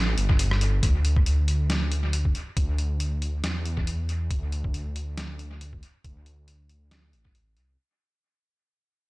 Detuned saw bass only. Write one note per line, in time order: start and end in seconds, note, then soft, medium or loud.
0.00 0.16 A1 medium
0.17 0.81 G1 medium
0.83 2.34 D2 loud
2.57 3.42 D2 loud
3.44 4.29 E2 medium
4.31 5.81 D2 loud
6.04 7.15 D2 loud
7.13 7.58 A1 medium
7.57 7.77 C2 medium